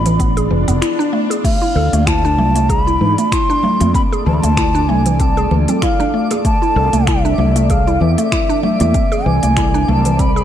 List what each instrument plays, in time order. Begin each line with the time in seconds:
Already playing: fretless electric bass A1, ambient pad B3 D4 F4 D5, bansuri B5
0.06 synth pluck E3, open hi-hat, cabasa
0.20 synth pluck B3, kick, open hi-hat, swell, cabasa
0.37 synth pluck G#4, open hi-hat, cabasa
0.50 fretless electric bass F1, synth pluck E3
0.68 fretless electric bass F1, synth pluck B3, open hi-hat, cabasa
0.82 synth pluck E4, finger snap, open hi-hat, cabasa
0.99 synth pluck D4, cabasa
1.13 synth pluck A3
1.30 synth pluck G#4, open hi-hat, cabasa
1.44 ambient pad A3, synth pluck A3, synth texture D5, bansuri F5, kick, open hi-hat, crash, cabasa
1.62 synth pluck E4, cabasa
1.75 fretless electric bass D2, synth pluck A4
1.93 fretless electric bass D2, synth pluck A3, open hi-hat, high conga, cabasa
2.07 synth pluck E4, bansuri A5, finger snap, kick, open hi-hat, cabasa
2.25 synth pluck D4, muted conga, cabasa
2.37 fretless electric bass C2, synth pluck A3, high conga, low conga
2.49 ambient pad A4
2.55 synth pluck A3, open hi-hat, cabasa
2.69 synth pluck G#4, bansuri A#5, kick, open hi-hat, cabasa
2.82 bansuri B5
2.87 synth pluck E4, cabasa
3.01 fretless electric bass G#2, synth pluck E3
3.18 synth pluck A3, open hi-hat, cabasa
3.32 synth pluck E4, bansuri C6, finger snap, kick, open hi-hat, cabasa
3.50 synth pluck D4, cabasa
3.63 synth pluck A3, low conga
3.80 fretless electric bass F2, synth pluck A3, open hi-hat, high conga, cabasa
3.94 synth pluck C4, bansuri B5, kick, open hi-hat, cabasa
4.12 synth pluck G#4, cabasa
4.26 fretless electric bass D2, synth pluck E3, bansuri A5
4.34 bansuri B5
4.41 fretless electric bass D2, synth pluck A3, bansuri A5, open hi-hat, high conga, cabasa
4.57 synth pluck E4, finger snap, kick, open hi-hat, cabasa
4.74 synth pluck D4, muted conga, cabasa
4.88 fretless electric bass C2, synth pluck A3, bansuri G#5, high conga, low conga
5.06 synth pluck E3, open hi-hat, cabasa
5.20 synth pluck C4, bansuri A5, kick, open hi-hat, cabasa
5.37 synth pluck G#4, cabasa
5.51 fretless electric bass D2, synth pluck E3, muted conga, high conga
5.68 synth pluck C4, open hi-hat, low conga, cabasa
5.82 synth pluck E4, bansuri F5, finger snap, kick, open hi-hat, cabasa
6.00 synth pluck D4, muted conga, high conga, cabasa
6.14 synth pluck A3
6.31 synth pluck G#4, open hi-hat, muted conga, cabasa
6.45 synth pluck A3, ambient pad C4, bansuri A5, kick, open hi-hat, cabasa
6.62 synth pluck E4, cabasa
6.68 ambient pad E3
6.76 fretless electric bass C2, synth pluck A4
6.93 fretless electric bass C2, synth pluck A3, open hi-hat, high conga, cabasa
7.07 synth pluck E4, bansuri E5, finger snap, kick, open hi-hat, cabasa
7.25 synth pluck D4, muted conga, cabasa
7.38 fretless electric bass C2, synth pluck A3, high conga, low conga
7.56 synth pluck A3, open hi-hat, cabasa
7.70 synth pluck G#4, bansuri F5, kick, open hi-hat, cabasa
7.87 synth pluck E4, cabasa
8.01 fretless electric bass E2, synth pluck E3, bansuri E5
8.18 synth pluck A3, open hi-hat, cabasa
8.32 synth pluck E4, finger snap, kick, open hi-hat, cabasa
8.49 synth pluck D4, cabasa
8.63 synth pluck A3, bansuri E5, low conga
8.80 fretless electric bass E2, synth pluck A3, open hi-hat, high conga, cabasa
8.94 synth pluck C4, kick, open hi-hat, cabasa
9.12 synth pluck G#4, cabasa
9.26 fretless electric bass C2, synth pluck E3, bansuri G#5
9.43 fretless electric bass C2, synth pluck A3, open hi-hat, high conga, cabasa
9.57 synth pluck E4, finger snap, kick, open hi-hat, cabasa
9.74 synth pluck D4, muted conga, cabasa
9.88 fretless electric bass C2, synth pluck A3, bansuri A5, high conga, low conga
10.05 synth pluck E3, open hi-hat, cabasa
10.19 synth pluck C4, bansuri B5, kick, open hi-hat, cabasa
10.36 synth pluck G#4, cabasa